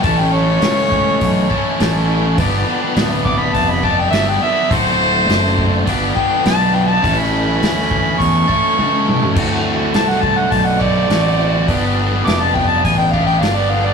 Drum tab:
CC |----------------|----------------|----------------|----------------|
HH |o---o---o---o---|o---o---o---o---|o---o---o---o---|o---o---o-------|
SD |----o-------o---|----o-------o---|----oo------o---|----o-----------|
T1 |----------------|----------------|----------------|------------o---|
T2 |----------------|----------------|----------------|--------------o-|
FT |----------------|----------------|----------------|---------------o|
BD |o-----o-o-o-----|o-----o-o-o-----|o-----o-o-o-----|o-----o-o-o-----|

CC |x---------------|----------------|
HH |----o---o---o---|o---o---o---o---|
SD |----oo------o---|----o-------o---|
T1 |----------------|----------------|
T2 |----------------|----------------|
FT |----------------|----------------|
BD |o-----o-o-o-----|o-----o-o-o-----|